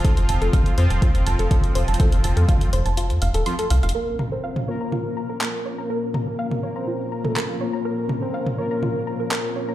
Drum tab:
HH |x-x-o-x-x-x-o-x-x-x-o-x-x-x-o-xx|x-x-o-x-x-x-o-x-x-x-o-x-o-x-o-xx|--------------------------------|--------------------------------|
CP |--------------------------------|--------------------------------|------------------------x-------|------------------------x-------|
T2 |--------------------------------|--------------------------------|----o-----o-----o---------------|----o-----o-----------o---------|
BD |o-------o-------o-------o-------|o-------o-----------------------|--------------------------------|--------------------------------|

HH |--------------------------------|
CP |------------------------x-------|
T2 |----o-----o-----o---------------|
BD |--------------------------------|